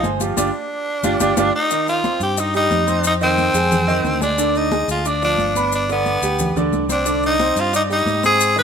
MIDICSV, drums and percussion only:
0, 0, Header, 1, 2, 480
1, 0, Start_track
1, 0, Key_signature, -3, "minor"
1, 0, Tempo, 334635
1, 531, Time_signature, 4, 2, 24, 8
1, 12379, End_track
2, 0, Start_track
2, 0, Title_t, "Drums"
2, 50, Note_on_c, 9, 63, 81
2, 56, Note_on_c, 9, 70, 31
2, 194, Note_off_c, 9, 63, 0
2, 199, Note_off_c, 9, 70, 0
2, 290, Note_on_c, 9, 63, 66
2, 293, Note_on_c, 9, 70, 70
2, 433, Note_off_c, 9, 63, 0
2, 436, Note_off_c, 9, 70, 0
2, 527, Note_on_c, 9, 63, 93
2, 537, Note_on_c, 9, 70, 101
2, 671, Note_off_c, 9, 63, 0
2, 681, Note_off_c, 9, 70, 0
2, 1484, Note_on_c, 9, 70, 89
2, 1490, Note_on_c, 9, 63, 104
2, 1627, Note_off_c, 9, 70, 0
2, 1633, Note_off_c, 9, 63, 0
2, 1724, Note_on_c, 9, 70, 110
2, 1729, Note_on_c, 9, 63, 106
2, 1867, Note_off_c, 9, 70, 0
2, 1872, Note_off_c, 9, 63, 0
2, 1965, Note_on_c, 9, 70, 97
2, 1966, Note_on_c, 9, 63, 100
2, 2108, Note_off_c, 9, 70, 0
2, 2109, Note_off_c, 9, 63, 0
2, 2447, Note_on_c, 9, 70, 88
2, 2455, Note_on_c, 9, 63, 34
2, 2591, Note_off_c, 9, 70, 0
2, 2598, Note_off_c, 9, 63, 0
2, 2692, Note_on_c, 9, 70, 29
2, 2693, Note_on_c, 9, 63, 35
2, 2835, Note_off_c, 9, 70, 0
2, 2836, Note_off_c, 9, 63, 0
2, 2927, Note_on_c, 9, 63, 99
2, 2931, Note_on_c, 9, 70, 29
2, 3071, Note_off_c, 9, 63, 0
2, 3075, Note_off_c, 9, 70, 0
2, 3165, Note_on_c, 9, 63, 35
2, 3166, Note_on_c, 9, 70, 68
2, 3309, Note_off_c, 9, 63, 0
2, 3310, Note_off_c, 9, 70, 0
2, 3403, Note_on_c, 9, 70, 89
2, 3407, Note_on_c, 9, 63, 35
2, 3547, Note_off_c, 9, 70, 0
2, 3550, Note_off_c, 9, 63, 0
2, 3644, Note_on_c, 9, 70, 30
2, 3647, Note_on_c, 9, 63, 36
2, 3787, Note_off_c, 9, 70, 0
2, 3790, Note_off_c, 9, 63, 0
2, 3886, Note_on_c, 9, 63, 78
2, 3887, Note_on_c, 9, 70, 31
2, 4029, Note_off_c, 9, 63, 0
2, 4030, Note_off_c, 9, 70, 0
2, 4123, Note_on_c, 9, 70, 72
2, 4130, Note_on_c, 9, 63, 65
2, 4266, Note_off_c, 9, 70, 0
2, 4274, Note_off_c, 9, 63, 0
2, 4358, Note_on_c, 9, 70, 88
2, 4366, Note_on_c, 9, 63, 34
2, 4501, Note_off_c, 9, 70, 0
2, 4510, Note_off_c, 9, 63, 0
2, 4606, Note_on_c, 9, 70, 29
2, 4610, Note_on_c, 9, 63, 34
2, 4750, Note_off_c, 9, 70, 0
2, 4754, Note_off_c, 9, 63, 0
2, 4849, Note_on_c, 9, 70, 31
2, 4850, Note_on_c, 9, 63, 65
2, 4992, Note_off_c, 9, 70, 0
2, 4994, Note_off_c, 9, 63, 0
2, 5083, Note_on_c, 9, 70, 71
2, 5091, Note_on_c, 9, 63, 35
2, 5226, Note_off_c, 9, 70, 0
2, 5234, Note_off_c, 9, 63, 0
2, 5326, Note_on_c, 9, 63, 34
2, 5326, Note_on_c, 9, 64, 87
2, 5330, Note_on_c, 9, 70, 81
2, 5470, Note_off_c, 9, 63, 0
2, 5470, Note_off_c, 9, 64, 0
2, 5473, Note_off_c, 9, 70, 0
2, 5565, Note_on_c, 9, 63, 34
2, 5565, Note_on_c, 9, 64, 66
2, 5574, Note_on_c, 9, 70, 32
2, 5708, Note_off_c, 9, 63, 0
2, 5708, Note_off_c, 9, 64, 0
2, 5717, Note_off_c, 9, 70, 0
2, 5801, Note_on_c, 9, 63, 81
2, 5809, Note_on_c, 9, 70, 29
2, 5944, Note_off_c, 9, 63, 0
2, 5953, Note_off_c, 9, 70, 0
2, 6045, Note_on_c, 9, 63, 75
2, 6049, Note_on_c, 9, 70, 73
2, 6188, Note_off_c, 9, 63, 0
2, 6193, Note_off_c, 9, 70, 0
2, 6288, Note_on_c, 9, 70, 96
2, 6431, Note_off_c, 9, 70, 0
2, 6525, Note_on_c, 9, 63, 37
2, 6533, Note_on_c, 9, 70, 31
2, 6669, Note_off_c, 9, 63, 0
2, 6676, Note_off_c, 9, 70, 0
2, 6765, Note_on_c, 9, 63, 99
2, 6773, Note_on_c, 9, 70, 31
2, 6908, Note_off_c, 9, 63, 0
2, 6916, Note_off_c, 9, 70, 0
2, 7003, Note_on_c, 9, 63, 36
2, 7010, Note_on_c, 9, 70, 64
2, 7146, Note_off_c, 9, 63, 0
2, 7154, Note_off_c, 9, 70, 0
2, 7246, Note_on_c, 9, 63, 35
2, 7247, Note_on_c, 9, 70, 83
2, 7390, Note_off_c, 9, 63, 0
2, 7390, Note_off_c, 9, 70, 0
2, 7481, Note_on_c, 9, 63, 36
2, 7492, Note_on_c, 9, 70, 30
2, 7625, Note_off_c, 9, 63, 0
2, 7636, Note_off_c, 9, 70, 0
2, 7718, Note_on_c, 9, 63, 86
2, 7736, Note_on_c, 9, 70, 30
2, 7862, Note_off_c, 9, 63, 0
2, 7879, Note_off_c, 9, 70, 0
2, 7966, Note_on_c, 9, 63, 69
2, 7975, Note_on_c, 9, 70, 73
2, 8109, Note_off_c, 9, 63, 0
2, 8118, Note_off_c, 9, 70, 0
2, 8209, Note_on_c, 9, 70, 86
2, 8210, Note_on_c, 9, 63, 34
2, 8353, Note_off_c, 9, 63, 0
2, 8353, Note_off_c, 9, 70, 0
2, 8452, Note_on_c, 9, 63, 36
2, 8455, Note_on_c, 9, 70, 28
2, 8596, Note_off_c, 9, 63, 0
2, 8598, Note_off_c, 9, 70, 0
2, 8687, Note_on_c, 9, 70, 32
2, 8689, Note_on_c, 9, 63, 62
2, 8831, Note_off_c, 9, 70, 0
2, 8832, Note_off_c, 9, 63, 0
2, 8927, Note_on_c, 9, 63, 34
2, 8928, Note_on_c, 9, 70, 68
2, 9071, Note_off_c, 9, 63, 0
2, 9072, Note_off_c, 9, 70, 0
2, 9165, Note_on_c, 9, 70, 78
2, 9178, Note_on_c, 9, 63, 32
2, 9178, Note_on_c, 9, 64, 83
2, 9308, Note_off_c, 9, 70, 0
2, 9322, Note_off_c, 9, 63, 0
2, 9322, Note_off_c, 9, 64, 0
2, 9413, Note_on_c, 9, 63, 33
2, 9413, Note_on_c, 9, 64, 71
2, 9418, Note_on_c, 9, 70, 31
2, 9556, Note_off_c, 9, 63, 0
2, 9556, Note_off_c, 9, 64, 0
2, 9562, Note_off_c, 9, 70, 0
2, 9651, Note_on_c, 9, 70, 28
2, 9654, Note_on_c, 9, 63, 82
2, 9794, Note_off_c, 9, 70, 0
2, 9797, Note_off_c, 9, 63, 0
2, 9886, Note_on_c, 9, 63, 72
2, 9891, Note_on_c, 9, 70, 70
2, 10029, Note_off_c, 9, 63, 0
2, 10034, Note_off_c, 9, 70, 0
2, 10123, Note_on_c, 9, 70, 83
2, 10132, Note_on_c, 9, 63, 33
2, 10267, Note_off_c, 9, 70, 0
2, 10275, Note_off_c, 9, 63, 0
2, 10371, Note_on_c, 9, 63, 35
2, 10371, Note_on_c, 9, 70, 27
2, 10514, Note_off_c, 9, 63, 0
2, 10514, Note_off_c, 9, 70, 0
2, 10607, Note_on_c, 9, 63, 92
2, 10614, Note_on_c, 9, 70, 31
2, 10750, Note_off_c, 9, 63, 0
2, 10757, Note_off_c, 9, 70, 0
2, 10847, Note_on_c, 9, 63, 34
2, 10853, Note_on_c, 9, 70, 67
2, 10991, Note_off_c, 9, 63, 0
2, 10996, Note_off_c, 9, 70, 0
2, 11089, Note_on_c, 9, 63, 33
2, 11099, Note_on_c, 9, 70, 90
2, 11232, Note_off_c, 9, 63, 0
2, 11243, Note_off_c, 9, 70, 0
2, 11325, Note_on_c, 9, 63, 37
2, 11340, Note_on_c, 9, 70, 29
2, 11469, Note_off_c, 9, 63, 0
2, 11483, Note_off_c, 9, 70, 0
2, 11565, Note_on_c, 9, 63, 76
2, 11580, Note_on_c, 9, 70, 30
2, 11708, Note_off_c, 9, 63, 0
2, 11724, Note_off_c, 9, 70, 0
2, 11813, Note_on_c, 9, 63, 67
2, 11814, Note_on_c, 9, 70, 73
2, 11956, Note_off_c, 9, 63, 0
2, 11958, Note_off_c, 9, 70, 0
2, 12049, Note_on_c, 9, 63, 33
2, 12054, Note_on_c, 9, 70, 97
2, 12193, Note_off_c, 9, 63, 0
2, 12197, Note_off_c, 9, 70, 0
2, 12293, Note_on_c, 9, 63, 34
2, 12295, Note_on_c, 9, 70, 31
2, 12379, Note_off_c, 9, 63, 0
2, 12379, Note_off_c, 9, 70, 0
2, 12379, End_track
0, 0, End_of_file